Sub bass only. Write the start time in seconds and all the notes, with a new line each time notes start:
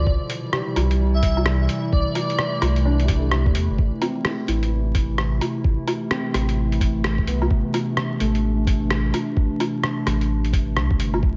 0.07 C2
0.76 C2
1.93 C2
2.62 C2
3.46 E2
3.55 E2
3.70 G1
3.79 A1
4.48 A1
5.64 A1
6.35 A1
7.27 C2
7.51 A1
8.21 A1
9.37 A1
10.07 A1
10.76 C2
10.91 C2
11.00 G1
11.23 B1